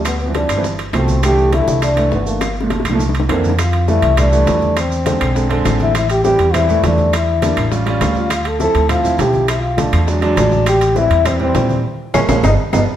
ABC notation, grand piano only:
X:1
M:4/4
L:1/16
Q:1/4=204
K:C
V:1 name="Grand piano" clef=bass
z3 [E,F,G,C]3 z [E,F,G,C] z4 [B,,F,A,]3 z | [D,E,A,]4 z [D,E,A,]3 z2 [D,E,A,]3 z [D,E,A,]2 | z3 [_B,,F,A,]3 z [B,,F,A,] z4 [D,E,_B,]3 z | [K:Aphr] z4 [E,G,A,]3 z [E,G,A,] z [E,G,A,]6 |
z4 [D,^G,C]3 z [D,G,C] z [D,G,C]6 | z4 [E,G,C]3 z [E,G,C] z [E,G,A,]6 | z4 [G,B,D]3 z [G,^C^E] z [G,CE]6 | z4 [F,CE]3 z [F,CE] z [F,CE]6 |
z4 [F,A,D]3 z [_G,^G,D] z [_G,^G,D]6 | z4 [E,G,C]3 z [E,G,C] z [E,G,C]6 | z4 [F,_A,B,]2 [F,A,B,]2 [F,G,=B,]2 z2 [F,G,B,]2 z2 |]